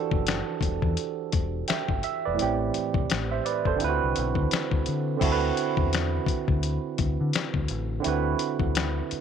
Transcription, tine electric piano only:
0.00 1.27 E3 medium
0.00 1.28 D4 medium
0.00 1.29 F#4 medium
0.00 1.30 G4 medium
0.00 1.31 A4 medium
1.68 2.02 E5 soft
1.68 2.02 G5 medium
2.04 2.24 E5 medium
2.25 2.59 B4 medium
2.25 2.58 D5 medium
2.34 3.75 A2 medium
2.34 3.76 E3 medium
2.39 3.77 C4 medium
2.39 3.79 G4 medium
3.31 3.44 C5 medium
3.31 3.44 E5 medium
3.45 3.65 B4 medium
3.45 3.65 D5 medium
3.67 4.00 A4 medium
3.67 4.00 C5 medium
3.76 5.16 D3 medium
3.76 5.17 C4 medium
3.80 5.18 E4 medium
3.80 3.89 F4 medium
3.80 5.20 B4 medium
3.89 5.23 F#4 medium
5.17 7.97 D3 medium
5.17 7.98 C4 medium
5.22 8.00 E4 medium
5.22 8.01 F#4 medium
5.26 5.31 A4 medium
5.32 8.05 B4 medium
8.00 9.21 D3 medium
8.00 9.21 C4 medium
8.04 9.21 E4 medium
8.04 9.21 F#4 medium
8.04 9.21 B4 medium

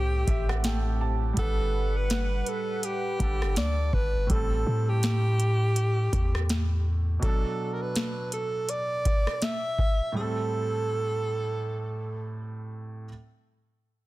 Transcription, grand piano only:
0.00 0.58 A2 medium
0.00 0.60 A3 medium
0.00 0.61 G4 medium
0.00 0.62 C5 medium
0.28 0.47 E5 medium
0.49 0.63 F#5 medium
0.63 1.36 A2 medium
0.63 1.37 A3 medium
0.63 1.38 G4 medium
0.63 0.98 G5 medium
0.67 1.39 A4 medium
1.01 1.35 A5 medium
1.33 3.14 G3 medium
1.33 3.16 D4 medium
1.39 3.19 B4 medium
1.39 3.17 F#5 medium
3.19 4.28 G3 medium
3.19 4.30 D4 medium
3.19 4.31 A4 medium
3.19 4.31 F#5 soft
4.27 7.17 A2 medium
4.27 7.18 G3 medium
4.32 7.20 C4 medium
4.32 7.21 A4 medium
7.20 10.10 B2 medium
7.20 10.11 F#3 medium
7.25 10.12 D4 medium
7.25 10.14 A4 medium
10.12 13.02 A2 medium
10.12 13.04 G3 medium
10.18 13.05 C4 medium
10.18 13.06 A4 medium

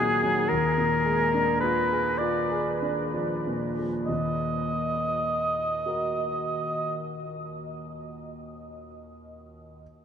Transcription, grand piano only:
0.00 0.46 D#2 soft
0.00 0.39 A#2 soft
0.00 0.13 F#3 soft
0.00 0.51 A#3 soft
0.00 0.51 D#4 soft
0.00 0.51 F#4 soft
0.23 0.49 F#3 soft
0.51 4.05 D#2 soft
0.78 1.21 A#2 soft
1.05 1.50 G#3 soft
1.34 1.79 D4 soft
1.63 2.08 F4 soft
1.92 2.38 G#4 soft
2.21 2.68 F4 soft
2.51 3.00 G#4 soft
2.82 3.33 D4 soft
3.14 3.66 F3 soft
3.47 3.97 A#2 soft
3.79 4.09 F3 soft
4.08 7.08 D#2 soft
4.08 7.09 A#2 soft
5.86 8.86 F#4 soft
5.86 8.88 A#4 soft
5.90 8.90 D#5 soft

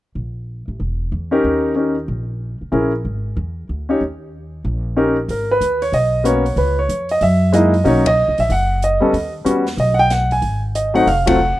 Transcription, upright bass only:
0.15 0.64 A#1 medium
0.68 0.79 A1 soft
0.80 1.10 E1 medium
1.12 1.42 E2 medium
1.44 2.05 D#2 medium
2.08 2.57 A#1 medium
2.61 muted upright bass stroke soft
2.72 3.02 A#1 medium
3.05 3.34 G#1 medium
3.37 3.66 E2 medium
3.69 3.99 D2 medium
4.01 4.62 D#2 medium
4.64 5.26 A#1 medium
5.28 5.58 G#1 medium
5.61 5.91 D#2 medium
5.92 6.54 B1 medium
6.56 6.86 C#2 medium
6.89 7.19 F2 medium
7.21 7.82 F#2 medium
7.85 8.25 B1 medium
8.28 8.38 C#2 medium
8.39 8.49 A#1 medium
8.49 8.98 F#1 medium
9.01 9.12 D2 medium
9.13 9.43 D#2 medium
9.45 9.75 E2 medium
9.77 10.38 B1 medium
10.42 11.03 G#1 medium
11.06 11.55 F1 medium

